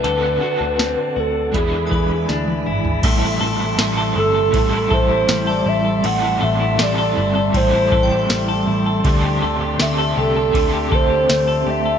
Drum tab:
CC |----------------|x---------------|----------------|----------------|
RD |----------------|x---x---x---x---|x---x---x---x---|x---x---x---x---|
HH |x---x---x---x---|----------------|----------------|----------------|
TB |----------------|----x-------x---|----x-------x---|----x-------x---|
SD |----o-------o---|----o-------o---|----o-------o---|----o-------o---|
T1 |-------------o--|----------------|----------------|----------------|
T2 |--------------o-|----------------|----------------|----------------|
FT |---------------o|----------------|----------------|----------------|
BD |--------o-o-----|o-------o-o-----|--------o-o-----|o-------o-o-----|